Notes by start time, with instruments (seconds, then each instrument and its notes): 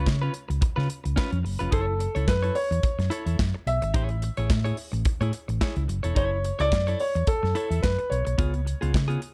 Already playing: grand piano C#5
0.06 fingered electric bass C#3, muted clean electric guitar stroke, kick, snare, clap
0.22 clean electric guitar C#4 F4 B4
0.33 muted clean electric guitar stroke, closed hi-hat
0.49 fingered electric bass C#2, muted clean electric guitar stroke, closed hi-hat
0.61 muted clean electric guitar stroke, muted fingered electric bass stroke, kick, closed hi-hat
0.76 fingered electric bass C#3, clean electric guitar C#4 F4 B4, snare
0.89 muted clean electric guitar stroke, closed hi-hat
1.04 fingered electric bass C#2, muted clean electric guitar stroke, closed hi-hat
1.16 clean electric guitar C#4 F4 B4, kick, snare, clap
1.32 fingered electric bass F2, muted clean electric guitar stroke, closed hi-hat
1.43 fingered electric bass F#1, muted clean electric guitar stroke, open hi-hat
1.59 fingered electric bass F1, clean electric guitar C#4 F4 B4, closed hi-hat
1.71 fingered electric bass F#1, clean electric guitar E4 A4 C#5, grand piano A4, kick, closed hi-hat
1.87 muted clean electric guitar stroke
1.99 muted clean electric guitar stroke, closed hi-hat
2.15 fingered electric bass C#2, clean electric guitar E4 A4 C#5, closed hi-hat
2.27 fingered electric bass F#2, grand piano B4, muted clean electric guitar stroke, kick, snare, clap
2.43 clean electric guitar E4 A4 C#5, closed hi-hat
2.55 grand piano C#5, muted clean electric guitar stroke, open hi-hat
2.71 fingered electric bass E2, muted clean electric guitar stroke, closed hi-hat
2.83 muted clean electric guitar stroke, muted fingered electric bass stroke, kick, closed hi-hat
2.99 fingered electric bass F#2, muted clean electric guitar stroke, snare, closed hi-hat
3.10 clean electric guitar E4 A4 C#5, closed hi-hat
3.26 fingered electric bass E2, clean electric guitar E4 A4 E5, closed hi-hat
3.39 fingered electric bass F#2, muted clean electric guitar stroke, kick, snare, clap
3.54 muted clean electric guitar stroke
3.67 fingered electric bass B1, grand piano E5, closed hi-hat
3.82 fingered electric bass G#1, muted clean electric guitar stroke, closed hi-hat
3.94 fingered electric bass A1, clean electric guitar E4 G#4 C#5, kick, closed hi-hat
4.09 muted clean electric guitar stroke, closed hi-hat
4.22 muted clean electric guitar stroke, closed hi-hat
4.37 fingered electric bass A1, clean electric guitar E4 G#4 C#5, closed hi-hat
4.50 fingered electric bass A2, muted clean electric guitar stroke, kick, snare, clap
4.64 clean electric guitar E4 G#4 C#5, closed hi-hat
4.77 muted clean electric guitar stroke, open hi-hat
4.92 fingered electric bass A1, muted clean electric guitar stroke, closed hi-hat
5.05 muted clean electric guitar stroke, kick, closed hi-hat
5.21 fingered electric bass A2, clean electric guitar E4 G#4 C#5, closed hi-hat
5.33 muted clean electric guitar stroke, closed hi-hat
5.48 fingered electric bass A1, muted clean electric guitar stroke, closed hi-hat
5.61 clean electric guitar E4 G#4 C#5, kick, snare, clap
5.76 fingered electric bass C#2, muted clean electric guitar stroke, closed hi-hat
5.88 fingered electric bass F#1, muted clean electric guitar stroke, closed hi-hat
6.03 fingered electric bass E1, clean electric guitar E4 A4 C#5, closed hi-hat
6.15 fingered electric bass F#1, clean electric guitar E4 A4 C#5, grand piano C#5, kick, closed hi-hat
6.31 muted clean electric guitar stroke
6.44 muted clean electric guitar stroke, closed hi-hat
6.59 fingered electric bass C#2, clean electric guitar E4 A4 C#5, grand piano D5, closed hi-hat
6.72 fingered electric bass F#2, kick, snare, clap
6.87 clean electric guitar E4 A4 C#5, closed hi-hat
7.00 grand piano C#5, muted clean electric guitar stroke, open hi-hat
7.15 fingered electric bass E2, muted clean electric guitar stroke, closed hi-hat
7.27 grand piano A4, muted clean electric guitar stroke, muted fingered electric bass stroke, kick, closed hi-hat
7.43 fingered electric bass F#2, muted clean electric guitar stroke, snare
7.55 clean electric guitar E4 A4 C#5, closed hi-hat
7.70 fingered electric bass E2, clean electric guitar E4 A4 E5, closed hi-hat
7.83 fingered electric bass F#2, grand piano B4, muted clean electric guitar stroke, kick, snare, clap
7.98 muted clean electric guitar stroke, closed hi-hat
8.10 fingered electric bass B1, grand piano C#5, closed hi-hat
8.25 fingered electric bass B1, muted clean electric guitar stroke, closed hi-hat
8.38 fingered electric bass C#2, clean electric guitar B3 F4 G#4, kick, closed hi-hat
8.54 muted clean electric guitar stroke, closed hi-hat
8.65 muted clean electric guitar stroke, closed hi-hat
8.81 fingered electric bass C#2, clean electric guitar B3 F4 G#4, closed hi-hat
8.93 fingered electric bass C#3, muted clean electric guitar stroke, kick, snare, clap
9.08 clean electric guitar B3 F4 G#4, closed hi-hat
9.21 muted clean electric guitar stroke, closed hi-hat